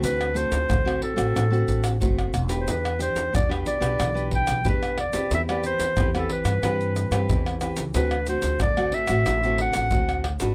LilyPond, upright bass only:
\new Staff \with { instrumentName = "Upright bass" } { \clef bass \time 4/4 \key d \mixolydian \tempo 4 = 91 d,8. d,16 d,8 r16 a,,16 a,,8 a,,8 fis,,8 e,,8 | e,8. e,16 e,8 r16 b,,16 b,,8. b,,16 e,8. e,16 | e,8. e,16 e,8 r16 g,16 g,8. g,16 e,8. cis,16 | d,8. d,16 d,8 r16 a,,16 a,,8. a,,16 d,8. aes,,16 | }